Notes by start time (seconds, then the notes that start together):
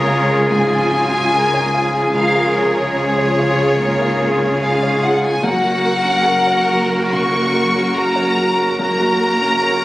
Already playing: C#2 C#3 C#4 F4 G#4 A#4 C#5
0.07 G#3 F4
0.30 G#4
0.50 G#2 F3 G#4 G#5
0.71 F4
0.92 F#3 F4 G#4
1.13 C#4
1.32 G#3 G#4 A#4
1.54 C#5
1.73 F3 F4 G#4
1.94 G#4
2.14 C#2 C#3 F4 G#4 A#4 F5
2.35 F4
2.56 G#4 C#5
2.77 C#4
2.96 F3 G#4
3.18 C#5
3.38 F4
3.60 G#4
3.80 G#2 A#3 F4 A#4
4.01 F4
4.21 G#4
4.42 C#4
4.62 G#3 F4 G#4 F5
4.83 C#5
5.03 F4 F#5
5.23 G#4 G#5
5.43 F#1 F#2 A#3 F#4 A#4 F#5
5.64 F#4
5.85 A#4
6.05 C#4
6.25 A#4
6.47 C#5
6.69 F#4
6.89 A#4
7.12 C#3 F#4 C#6
7.33 F#4
7.54 A#4
7.75 C#4
7.95 A#4 A#5
8.16 C#5
8.37 F#4
8.58 A#4
8.79 F#1 F#2 A#3 F#4 A#4 A#5
9.00 F#4
9.21 A#4
9.42 C#4
9.63 A#4 C#5